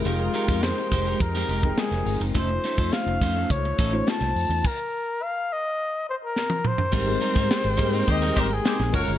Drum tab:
CC |----------------|----------------|x---------------|x---------------|
HH |x-x-x-x-x-x-x-o-|x-x-x-x-x-x-x-o-|----------------|--x-x-x-x-x-x-o-|
SD |---oo----o--oo--|--o-o-------oo--|------------o---|---oo-------oo--|
T1 |----------------|----------------|-------------o--|----------------|
T2 |----------------|----------------|--------------o-|----------------|
FT |----------------|----------------|---------------o|----------------|
BD |---o--o-o--o----|o--o--o-o-o-----|o---------------|o--o--o-o-o---o-|